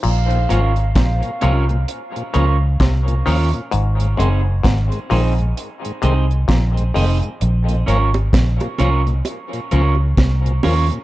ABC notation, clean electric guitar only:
X:1
M:4/4
L:1/8
Q:"Swing 16ths" 1/4=65
K:Bbm
V:1 name="Clean electric guitar"
z [DFBd] z [DFBd] z [DFBd] z [DFBd] | z [CEAc] z [CEAc] z [CEAc] z [CEAc] | z [DFBd] z [DFBd] z [DFBd] z [DFBd] |]